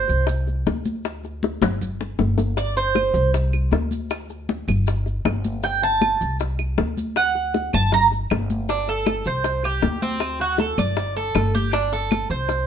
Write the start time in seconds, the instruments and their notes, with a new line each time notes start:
Already playing: cuban tres C5
0.08 upright bass C2, high bongo, high conga, maracas
0.27 high bongo, high conga, maracas
0.47 high bongo, high conga, maracas
0.66 upright bass D2, high bongo, low bongo, high conga, maracas
0.85 high conga, maracas
1.05 high bongo, high conga, maracas
1.23 high bongo, high conga, maracas
1.43 high bongo, high conga, maracas
1.62 upright bass G1, high bongo, high conga, low conga, maracas
1.81 high conga, low conga, maracas
2.01 low bongo, high conga, maracas
2.19 upright bass G1, low bongo, high conga, maracas
2.38 low bongo, high conga, maracas
2.57 cuban tres D5, high bongo, high conga, maracas
2.76 cuban tres C5, high bongo, high conga, maracas
2.95 high bongo, high conga, claves, maracas
3.14 upright bass C2, high bongo, high conga, maracas
3.34 high bongo, high conga, maracas
3.53 high bongo, high conga, claves, maracas
3.71 upright bass D2, high bongo, low bongo, high conga, maracas
3.91 high conga, maracas
4.10 high bongo, high conga, claves, maracas
4.30 high bongo, high conga, maracas
4.49 high bongo, high conga, maracas
4.68 upright bass G1, high bongo, high conga, low conga, claves, maracas
4.87 high bongo, maracas
5.06 high bongo, high conga, maracas
5.25 upright bass G1, high bongo, low bongo, high conga, claves, maracas
5.44 high conga, maracas
5.63 cuban tres G5, high bongo, high conga, maracas
5.82 cuban tres A5, high bongo, high conga, maracas
6.01 high bongo, high conga, claves, maracas
6.21 upright bass C2, high bongo, high conga, maracas
6.40 high bongo, high conga, maracas
6.59 high bongo, high conga, claves, maracas
6.78 upright bass D2, high bongo, low bongo, high conga, maracas
6.97 high conga, maracas
7.16 cuban tres F#5, high bongo, high conga, claves, maracas
7.35 high bongo, high conga, maracas
7.54 high bongo, high conga, maracas
7.73 upright bass G1, cuban tres A5, high bongo, high conga, low conga, claves, maracas
7.92 cuban tres A#5, high bongo, high conga, low conga, maracas
8.12 high bongo, high conga, maracas
8.30 upright bass G1, high bongo, low bongo, high conga, claves, maracas
8.50 high conga, maracas
8.69 cuban tres D4, high bongo, high conga, maracas
8.87 cuban tres A4, high bongo, high conga, maracas
9.06 high bongo, high conga, claves, maracas
9.25 upright bass C2, cuban tres C5, high bongo, high conga, maracas
9.44 high bongo, high conga, maracas
9.63 cuban tres G4, high bongo, high conga, claves, maracas
9.82 upright bass D2, high bongo, low bongo, high conga, maracas
10.02 cuban tres C4, high conga, maracas
10.20 high bongo, high conga, claves, maracas
10.40 cuban tres F#4, high bongo, high conga, maracas
10.58 cuban tres A4, high bongo, high conga, maracas
10.78 upright bass G1, cuban tres D5, high bongo, high conga, low conga, claves, maracas
10.97 high bongo, high conga, maracas
11.16 cuban tres A4, high bongo, high conga, maracas
11.35 upright bass G1, high bongo, low bongo, high conga, claves, maracas
11.55 cuban tres G4, high conga, maracas
11.73 cuban tres D4, high bongo, high conga, maracas
11.92 cuban tres A4, high bongo, high conga, maracas
12.11 high bongo, high conga, claves, maracas
12.30 upright bass C2, cuban tres C5, high bongo, high conga, maracas
12.49 high bongo, high conga, maracas